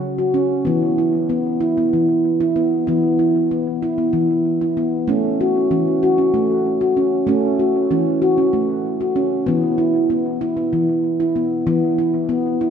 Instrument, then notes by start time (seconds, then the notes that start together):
handpan
Already playing: F#3
0.18 F#4
0.34 C#4
0.65 E3 B3
0.98 E4
1.29 B3
1.61 E4
1.77 B3
1.93 E3
2.40 E4
2.56 B3
2.87 E3 B3
3.19 E4
3.51 B3
3.83 E4
3.98 B3
4.13 E3
4.61 E4
4.77 B3
5.08 A3 C#4
5.41 F#4
5.71 E3 C#4
6.03 F#4
6.18 C#4
6.34 A3
6.81 F#4
6.97 C#4
7.27 A3 C#4
7.59 F#4
7.91 E3 C#4
8.22 F#4
8.38 C#4
8.53 A3
9.01 F#4
9.16 C#4
9.46 E3 B3
9.78 E4
10.10 B3
10.41 E4
10.57 B3
10.73 E3
11.20 E4
11.36 B3
11.67 E3 B3
11.98 E4
12.29 B3
12.61 E4